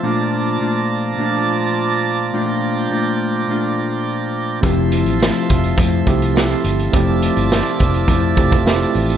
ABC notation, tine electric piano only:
X:1
M:4/4
L:1/8
Q:1/4=104
K:F
V:1 name="Tine electric piano"
z8 | z8 | [A,CEG]3 z2 [A,CEG] [A,CEG]2 | [A,CEG]3 z2 [A,CEG] [A,CEG]2 |]